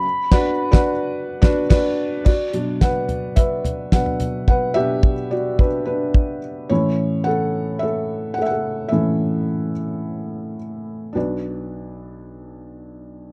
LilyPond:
<<
  \new Staff \with { instrumentName = "Soft synth lead" } { \time 4/4 \key b \minor \tempo 4 = 108 b''2~ b''8 r4. | r1 | r1 | r1 |
r1 | r1 | }
  \new Staff \with { instrumentName = "Felt piano" } { \time 4/4 \key b \minor << { r8 <d' fis' b' d'' fis''>8 r16 <d' fis' b' d'' fis''>8 r8. <d' fis' b' d''>8 <d' fis' b' d''>8 r8 | d''4 fis''4 e''4 fis''4 | fis''8 e''4 d''8 b'8 b'4 r8 | cis''4 fis''4 e''4 fis''32 e''32 fis''8. |
e''2. r4 | <d' fis' b' d''>1 | } \\ { r1 | fis'4 b'4 b'4 b'4 | b'8 g'4 fis'8 d'8 d'4 r8 | e'4 a'4 a'4 a'16 a'8. |
a'2. r4 | r1 | } >> }
  \new Staff \with { instrumentName = "Felt piano" } { \clef bass \time 4/4 \key b \minor r1 | r8 <b, fis d'>2~ <b, fis d'>8 <b, fis d'>8 r8 | r8 <b, d' fis'>8 r2. | <a, e cis'>1 |
<a, e cis'>4. r2 r8 | b,,1 | }
  \new DrumStaff \with { instrumentName = "Drums" } \drummode { \time 4/4 r8 <cymc bd sn>8 r16 <bd sn>8. r8 <bd sn>8 <cymc bd sn>4 | <cymc bd>8 hh8 <hh bd sn>8 <hh tomfh>8 <hh bd>8 <hh tomfh>8 <hh bd sn>16 tomfh16 <hh tomfh>8 | bd4 bd4 bd4 bd4 | r4 r4 r4 r4 |
r4 r4 r4 r4 | r4 r4 r4 r4 | }
>>